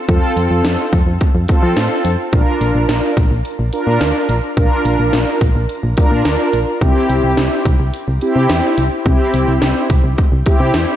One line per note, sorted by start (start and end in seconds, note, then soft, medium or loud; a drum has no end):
0.09 0.20 F2 loud
0.09 0.91 C4 medium
0.09 0.91 F4 medium
0.09 0.91 A4 medium
0.09 kick loud
0.09 closed hi-hat medium
0.37 0.48 F2 medium
0.37 closed hi-hat medium
0.51 0.62 F2 medium
0.65 0.76 F2 loud
0.65 snare loud
0.65 closed hi-hat medium
0.93 1.04 F2 loud
0.93 kick medium
0.93 closed hi-hat medium
1.07 1.18 F2 medium
1.21 kick medium
1.21 closed hi-hat medium
1.35 1.46 F2 loud
1.48 2.11 C4 medium
1.48 2.11 F4 medium
1.48 2.11 A4 medium
1.48 kick medium
1.48 closed hi-hat medium
1.63 1.74 F3 medium
1.77 1.88 A2 medium
1.77 snare loud
1.77 closed hi-hat medium
2.05 2.16 F2 loud
2.05 closed hi-hat medium
2.33 2.44 A#1 loud
2.33 3.15 D4 medium
2.33 3.15 F4 medium
2.33 3.15 A#4 medium
2.33 kick loud
2.33 closed hi-hat medium
2.61 2.72 A#1 loud
2.61 closed hi-hat medium
2.75 2.86 A#1 loud
2.89 3.00 A#1 loud
2.89 snare loud
2.89 closed hi-hat medium
3.17 3.28 A#1 loud
3.17 kick loud
3.17 closed hi-hat medium
3.31 3.43 A#1 loud
3.45 closed hi-hat medium
3.59 3.71 A#1 medium
3.73 4.35 D4 medium
3.73 4.35 F4 medium
3.73 4.35 A#4 medium
3.73 closed hi-hat medium
3.87 3.99 A#2 medium
4.01 4.13 D2 medium
4.01 snare loud
4.01 closed hi-hat medium
4.29 4.41 A#1 loud
4.29 closed hi-hat medium
4.57 4.69 A#1 loud
4.57 5.40 D4 medium
4.57 5.40 F4 medium
4.57 5.40 A#4 medium
4.57 kick loud
4.57 closed hi-hat medium
4.85 4.97 A#1 loud
4.85 closed hi-hat medium
4.99 5.11 A#1 loud
5.13 5.25 A#1 loud
5.13 snare loud
5.13 closed hi-hat medium
5.41 5.53 A#1 loud
5.41 kick medium
5.41 closed hi-hat medium
5.55 5.67 A#1 loud
5.69 closed hi-hat medium
5.83 5.95 A#1 loud
5.97 6.59 D4 medium
5.97 6.59 F4 medium
5.97 6.59 A#4 medium
5.97 kick medium
5.97 closed hi-hat medium
6.11 6.23 A#2 medium
6.25 6.37 D2 medium
6.25 snare loud
6.25 closed hi-hat medium
6.53 6.65 A#1 medium
6.53 closed hi-hat medium
6.81 6.93 C2 loud
6.81 7.64 C4 medium
6.81 7.64 E4 medium
6.81 7.64 G4 medium
6.81 kick loud
6.81 closed hi-hat medium
7.09 7.21 C2 medium
7.09 closed hi-hat medium
7.24 7.35 C2 medium
7.37 7.49 C2 loud
7.37 snare loud
7.37 closed hi-hat medium
7.65 7.77 C2 loud
7.65 kick medium
7.65 closed hi-hat medium
7.80 7.91 C2 loud
7.94 closed hi-hat medium
8.08 8.19 C2 loud
8.21 8.84 C4 medium
8.21 8.84 E4 medium
8.21 8.84 G4 loud
8.21 closed hi-hat medium
8.36 8.47 C3 loud
8.50 8.61 E2 medium
8.50 snare loud
8.50 closed hi-hat medium
8.78 8.89 C2 medium
8.78 closed hi-hat medium
9.06 9.17 C2 loud
9.06 9.88 C4 medium
9.06 9.88 E4 medium
9.06 9.88 G4 medium
9.06 kick loud
9.06 closed hi-hat medium
9.34 9.45 C2 loud
9.34 closed hi-hat medium
9.48 9.59 C2 loud
9.62 9.73 C2 loud
9.62 snare loud
9.62 closed hi-hat medium
9.90 10.01 C2 loud
9.90 kick loud
9.90 closed hi-hat medium
10.04 10.15 C2 loud
10.18 kick medium
10.18 closed hi-hat medium
10.32 10.44 C2 medium
10.46 10.96 C4 medium
10.46 10.96 E4 medium
10.46 10.96 G4 medium
10.46 kick loud
10.46 closed hi-hat medium
10.60 10.71 C3 medium
10.74 10.86 E2 medium
10.74 snare loud
10.74 closed hi-hat medium